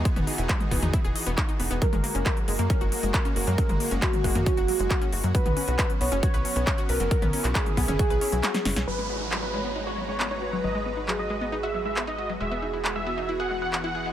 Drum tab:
HH |xxoxxxoxxxoxxxox|xxoxxxoxxxoxxxox|xxoxxxoxxxoxxxox|xxoxxxoxxxoxxxox|
CP |----x-------x---|----x-------x---|----x-------x---|----x-------x---|
SD |----------------|----------------|----------------|----------------|
T2 |-o---o-o--------|-o--------------|-o---o-o--------|-o--------------|
BD |o---o-o-o---o---|o---o---o---o---|o---o-o-o---o---|o---o---o---o---|

HH |xxoxxxoxxxoxxxox|----------------|----------------|----------------|
CP |---xx-------x---|----x-------x---|----x-------x---|----x-------x---|
SD |------------oooo|----------------|----------------|----------------|
T2 |-o---o-o--------|----------------|----------------|----------------|
BD |o---o-o-o-------|----------------|----------------|----------------|